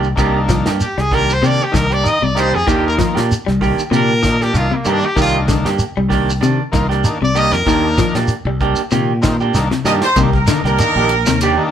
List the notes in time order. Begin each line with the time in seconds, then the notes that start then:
Already playing: C2
0.03 shekere
0.15 C2 D#3 A#3 D4 G4, muted clean electric guitar stroke, kick, snare, closed hi-hat, shekere
0.49 F3, kick, snare, closed hi-hat, shekere
0.66 G2 A#3 D4 G4, snare, shekere
0.80 G4, muted fingered electric bass stroke, closed hi-hat, shekere
0.98 C2 G3 G#4, snare
1.11 D#3 A#3 D4 G4 A#4, kick, snare, open hi-hat, shekere
1.30 C5, shekere
1.42 C3 D#3 A#3 D4 G4, closed hi-hat, shekere
1.46 D5
1.64 G4
1.71 C2 D#3 A#3 D4, kick, snare, closed hi-hat, shekere
1.76 A#4
1.90 A#3 D4 G4 D5, closed hi-hat, shekere
2.03 D#3 A#3 D#4, closed hi-hat, shekere
2.08 D#5
2.22 C2 C3 D5
2.35 D#3 A#3 D4 D#4 G4, snare, closed hi-hat, shekere
2.39 C5
2.54 F2 G#4, shekere
2.66 D#2 D#3 A#3 D4 F4 G4, kick, closed hi-hat, shekere
2.88 A#4
2.99 F3, kick, snare, closed hi-hat, shekere
3.15 A#2 A#3 D4 G4, snare, closed hi-hat, shekere
3.31 muted fingered electric bass stroke, closed hi-hat, shekere
3.47 C2 G3, snare
3.61 D#3 A#3 D4 G4, kick, open hi-hat, shekere
3.79 muted fingered electric bass stroke, closed hi-hat, shekere
3.91 A#2 C3 D#3 A#3 D4 G4, closed hi-hat, shekere
3.95 A#4
4.22 D#3 A#3 D4, kick, snare, closed hi-hat, shekere
4.41 A#3 D4 G4, snare, shekere
4.53 C2 D#3 A#3 D4 F4, closed hi-hat, shekere
4.71 C3 A#3
4.84 G2 D#3 A#3 D4 G4, closed hi-hat, shekere
4.89 D4
5.03 G4, shekere
5.16 C2 D#3 A#3 D4 G4, kick, closed hi-hat, shekere
5.21 F4
5.48 D3, kick, snare, closed hi-hat, shekere
5.65 G2 A#3 D4 G4, snare, shekere
5.79 muted fingered electric bass stroke, closed hi-hat, shekere
5.97 C2 G3
6.09 D#3 A#3 D4 G4, kick, snare, open hi-hat, shekere
6.30 shekere
6.41 C3 D#3 D4, muted clean electric guitar stroke, closed hi-hat, shekere
6.72 C2 D#3 A#3 F4, kick, snare, closed hi-hat, shekere
6.89 A#3 D4 G4, snare, closed hi-hat, shekere
7.04 D#3 A#3 D4, closed hi-hat, shekere
7.22 C2 C3 D5
7.34 D#3 A#3 D4 G4 D#5, closed hi-hat, shekere
7.52 F2 A#4, snare, shekere
7.65 D#2 D#3 A#3 D4 G4, kick, closed hi-hat, shekere
7.98 F3, kick, snare, closed hi-hat, shekere
8.15 A#2 A#3 D4 G4, snare, closed hi-hat, shekere
8.28 muted fingered electric bass stroke, closed hi-hat, shekere
8.45 C2 G3
8.60 A#3 D4 G4, kick, closed hi-hat, shekere
8.76 closed hi-hat, shekere
8.91 A#2 C3 D#3 A#3 G4, muted clean electric guitar stroke, closed hi-hat, shekere
9.22 D#3 A#3 C4, kick, snare, closed hi-hat, shekere
9.40 A#3 D4 G4, shekere
9.54 C2 D#3 A#3 D4, snare, shekere
9.71 C3, snare
9.84 G2 D#3 A#3 D4 G4 D#5, snare, shekere
10.01 C5, snare, shekere
10.16 C2 C3 D#3 A#3 D4 G4, muted clean electric guitar stroke, kick, ride bell, shekere
10.33 A#4, kick
10.47 D3 D#3 A#3 D4, snare, ride bell, shekere
10.64 C2 A#3 D4 G4 A#4, snare, shekere
10.78 D#3 A#3 D4, ride bell, shekere
10.96 A#1 A#3 D4 G4
11.09 ride bell, shekere
11.26 D#2 C3, snare, ride bell, shekere
11.41 D#3 A#3 D4 G4, ride bell, shekere
11.57 D#3 A#3 D4